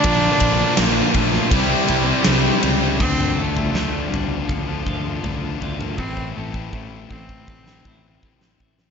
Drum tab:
CC |----------------|x---------------|----------------|
RD |x-x-x-x-x-x-x-x-|----------------|----------------|
SD |----o--o----o---|----o-----------|---------o---o-o|
T2 |----------------|-o--------o----o|----------------|
FT |----------------|o--o--o-o---o-o-|----------------|
BD |o-o---o-o-------|o-------o-o-----|oo-oo-ooo-o-o-o-|